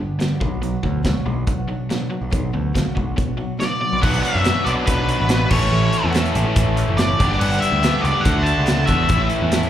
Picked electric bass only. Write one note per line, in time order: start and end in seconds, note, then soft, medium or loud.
0.42 0.76 B1 medium
0.84 1.01 D2 medium
1.05 1.14 D2 medium
1.26 1.43 B1 medium
2.21 2.30 B1 medium
2.33 2.50 B1 medium
2.55 2.72 D2 medium
2.76 2.84 D2 medium
2.97 3.14 B1 loud
3.93 4.01 B1 medium
4.03 4.20 B1 medium
4.35 4.52 F#2 medium
4.67 4.75 B1 loud
4.88 5.13 B1 medium
5.20 5.45 A1 medium
5.51 5.68 A1 medium
5.71 5.89 A1 medium
6.04 6.21 E2 medium
6.36 6.44 A1 loud
6.56 6.82 A1 loud
6.88 7.13 F#1 medium
7.20 7.37 G1 medium
7.41 7.58 G1 medium
7.72 7.89 D2 medium
8.04 8.13 C#2 loud
8.26 8.51 D2 loud
8.58 8.83 C#2 medium
8.88 9.05 E2 medium
9.10 9.27 A1 loud
9.42 9.59 E2 loud